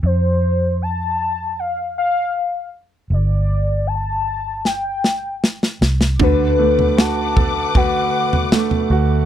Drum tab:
SD |----------------|--------o-o-oooo|----o-------o---|
FT |----------------|----------------|o--o--o-o--o-o--|
BD |----------------|----------------|o-----o-o-------|